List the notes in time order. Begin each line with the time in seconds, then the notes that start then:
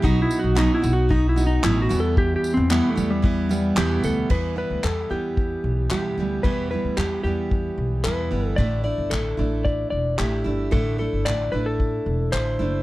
0.02 B1 B2 F#3 B3 D#4 F#4, kick
0.22 E4
0.31 tambourine
0.39 F#4
0.44 B1
0.55 B2 F#3 B3 D#4 F#4, clap
0.74 E4
0.82 B1 B3 D#4 F#4, tambourine
0.93 F#4
1.09 F#3 B3 D#4 F#4, kick
1.29 E4
1.36 B3 D#4 F#4, tambourine
1.47 D#4
1.63 A1 B2 F#3 B3 D#4 E4 F#4, clap
1.82 F#4
1.89 E2 B2 E3 G3 B3 E4, tambourine
2.00 A4
2.17 G4, kick
2.36 G4
2.44 tambourine
2.54 E2 C4
2.70 E2 B2 E3 G3 B3 E4, clap
2.89 A3
2.95 E2 E3 G3 B3 E4, tambourine
3.10 G3
3.22 E3 G3 B3 E4, kick
3.49 E3 G3 B3 E4, tambourine
3.76 E2 B2 E3 G3 B3 E4 G4, clap
4.04 D2 A4, tambourine
4.30 E2 B2 E3 G3 B3 E4 B4, kick, crash
4.56 E3 G3 B3 E4 B4
4.70 D2
4.83 E2 E3 G3 B3 E4 A4, clap
5.10 E2 E3 G3 B3 E4 G4
5.37 kick
5.64 B1
5.90 E2 E3 G3 B3 E4 G4, clap
6.17 D2 E3 G3 B3 E4
6.43 E2 B2 E3 G3 B3 E4 B4, kick
6.71 E3 G3 B3 E4 B4
6.84 D2
6.97 E2 E3 G3 B3 E4 G4, clap
7.23 E2 E3 G3 B3 E4 G4
7.51 kick
7.78 B1
8.04 E2 E3 G3 B3 E4 B4, clap
8.31 G1 E3 G3 B3 E4
8.48 A4
8.56 A1 A2 D3 A3 D4 E4 D5, kick
8.84 A3 D4 E4 D5
8.98 G1
9.10 A1 D3 A3 D4 E4 A4, clap
9.37 A1 A3 D4 E4
9.65 D5, kick
9.90 E1 D5
10.18 A1 D3 A3 D4 E4 G4, clap
10.44 G1 A3 D4 E4
10.71 A1 A2 D3 A3 D4 E4 A4, kick
10.98 A3 D4 E4 A4
11.13 G1
11.25 A1 D3 A3 D4 E4 D5, clap
11.52 A1 A3 D4 E4 B4
11.66 A4
11.80 kick
12.06 E1
12.32 A1 D3 A3 D4 E4 C5, clap
12.59 F#1 A3 D4 E4